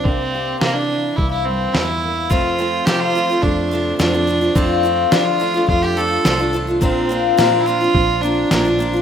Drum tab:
SD |--o---o-|--o---o-|--o---o-|--o---o-|
BD |o---o---|o---o---|o---o---|o---o---|